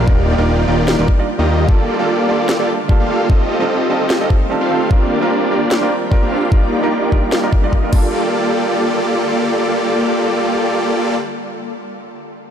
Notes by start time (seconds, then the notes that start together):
Already playing: A#3 D4
0.06 D#1 D#3 G3 A#3 D4 D#4 F4 G4 A#4 D5, kick
0.37 D#1 G3 A#3 D4 D#4 F4 G4 A#4 D5
0.67 D#1 G3 A#3 D4 D#4 F4 G4 A#4 D5
0.88 snare
0.98 D#1 G3 A#3 D4 D#4 F4 G4 A#4 D5
1.08 kick
1.18 G3 D4 D#4 F4 D5
1.38 D#2 G3 A#3 D4 D#4 F4 G4 A#4 D#5
1.68 D3 G3 A3 A#3 D4 F4 G4 A4 D5, kick
1.98 G3 A#3 D4 F4 G4 A4 D5
2.28 G3 A#3 D4 F4 G4 A4 D5
2.49 snare
2.59 G3 A#3 D4 F4 G4 A4 D5
2.88 G3 A#3 D4 F4 A4, kick
3.00 A#3 F4 G4 A4 F5
3.09 G3 A#3 D4 F4 A4
3.29 D#3 G3 A3 C4 D#4 F4 G4 A4 D#5, kick
3.59 G3 C4 D#4 F4 G4 A4 D#5
3.89 G3 C4 D#4 F4 G4 A4 D#5
4.10 snare
4.20 G3 C4 D#4 F4 G4 A4 D#5
4.30 kick
4.50 G3 C4 D#4 F4 A4
4.61 C4 F4 G4 A4 F5
4.70 G3 C4 D#4 F4 A4
4.90 F3 G3 A#3 C4 D4 F4 G4 A#4 D5, kick
5.20 G3 A#3 C4 D4 F4 G4 A#4 D5
5.50 G3 A#3 C4 D4 F4 G4 A#4 D5
5.71 snare
5.81 G3 A#3 C4 D4 F4 G4 A#4 D5
6.11 G3 C4 D4 F4 A#4, kick
6.22 A#3 D4 F4 G4 F5
6.31 G3 C4 D4 F4 A#4
6.51 G3 A#3 D4 D#4 F4 G4 A#4 D5, kick
6.82 G3 A#3 D4 D#4 F4 G4 A#4 D5
7.11 G3 A#3 D4 D#4 F4 G4 A#4 D5, kick
7.32 snare
7.42 G3 A#3 D4 D#4 F4 G4 A#4 D5
7.53 kick
7.62 G3 A#3 D4 D#4 F4 G4 D5 D#5
7.73 kick
7.82 G3 D4 D#4 F4 A#4
7.90 D3 G3 A#3 D4 F4 G4 A4 D5, kick, crash
7.94 F4 A4